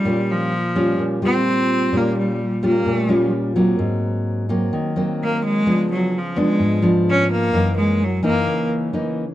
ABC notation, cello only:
X:1
M:4/4
L:1/8
Q:1/4=128
K:Bbm
V:1 name="Cello" clef=bass
=G, F,3 z C3 | B, =G,2 B,3 z2 | z6 B, A,- | A, G, F, A,2 z D B,- |
B, A, G, B,2 z3 |]